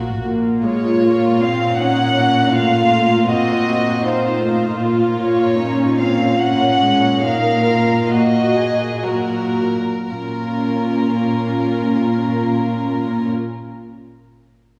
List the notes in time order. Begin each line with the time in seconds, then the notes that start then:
Already playing: A#1 A#2 F#4
0.23 A#2 A#3 F4
0.64 G#3 C#5
1.03 A#3 F4
1.41 C4 F5
1.78 C#4 D#4 F#5
2.17 C#4
2.55 A3 F4 F5
3.28 C4 F#4 D#5
4.04 C4 D#4 F4 C5
4.42 A3 F4
4.80 A#2 A#3 F4
5.22 C#5
5.59 C#4 D#4 F4
5.99 C4 C#4 F5
6.40 A#3 C#4 F#5
6.82 G#3
7.23 A#3 D#4 A#4 F5
7.67 F4
8.10 F#4 D#5
8.57 G#4
9.05 F#3 F#4 A#4
10.10 A#2 A#3 C#4 F4 A#4